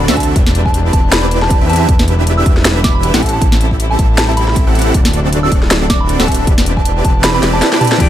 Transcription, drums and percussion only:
0.08 snare
0.17 kick, closed hi-hat
0.20 closed hi-hat
0.23 closed hi-hat
0.36 kick, closed hi-hat
0.47 snare
0.55 closed hi-hat
0.66 kick
0.74 closed hi-hat
0.93 kick, closed hi-hat
1.12 snare, closed hi-hat
1.31 closed hi-hat
1.42 snare
1.50 kick, closed hi-hat
1.70 closed hi-hat
1.73 closed hi-hat
1.76 closed hi-hat
1.89 kick, closed hi-hat
1.99 snare
2.08 closed hi-hat
2.27 closed hi-hat
2.46 kick, closed hi-hat
2.57 snare
2.65 snare, closed hi-hat
2.84 kick, snare, closed hi-hat
3.03 closed hi-hat
3.14 snare
3.22 kick, closed hi-hat
3.26 closed hi-hat
3.29 closed hi-hat
3.42 kick, closed hi-hat
3.52 snare
3.61 closed hi-hat
3.71 kick
3.80 closed hi-hat
3.99 kick, closed hi-hat
4.18 snare, closed hi-hat
4.37 closed hi-hat
4.48 snare
4.56 kick, closed hi-hat
4.75 closed hi-hat
4.79 closed hi-hat
4.82 closed hi-hat
4.94 kick, closed hi-hat
5.05 snare
5.13 closed hi-hat
5.33 closed hi-hat
5.52 kick, closed hi-hat
5.62 snare
5.71 snare, closed hi-hat
5.90 kick, snare, closed hi-hat
6.09 closed hi-hat
6.20 snare
6.28 kick, closed hi-hat
6.32 closed hi-hat
6.34 closed hi-hat
6.47 kick, closed hi-hat
6.58 snare
6.66 closed hi-hat
6.77 kick
6.85 closed hi-hat
7.05 kick, closed hi-hat
7.24 snare, closed hi-hat
7.43 snare, closed hi-hat
7.62 snare, closed hi-hat
7.73 snare
7.81 closed hi-hat, mid tom
7.85 closed hi-hat
7.87 closed hi-hat
7.92 snare
8.00 kick, closed hi-hat, crash

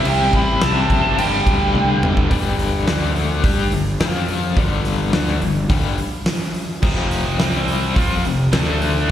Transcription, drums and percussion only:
0.05 crash
0.33 kick, crash
0.61 snare, crash
0.90 kick, crash
1.18 crash
1.47 kick, crash
1.75 high tom
2.03 mid tom
2.17 kick
2.31 kick, open hi-hat
2.59 open hi-hat
2.87 snare, open hi-hat
3.16 open hi-hat
3.44 kick, open hi-hat
3.72 open hi-hat
4.00 snare, open hi-hat
4.28 open hi-hat
4.57 kick, open hi-hat
4.85 snare, open hi-hat
5.13 snare, open hi-hat
5.28 snare
5.42 open hi-hat
5.70 kick, open hi-hat
5.98 open hi-hat
6.26 snare, open hi-hat
6.54 open hi-hat
6.83 kick, crash
7.11 snare, open hi-hat
7.39 snare, open hi-hat
7.68 open hi-hat
7.96 kick, open hi-hat
8.25 open hi-hat
8.53 snare, open hi-hat
8.82 open hi-hat

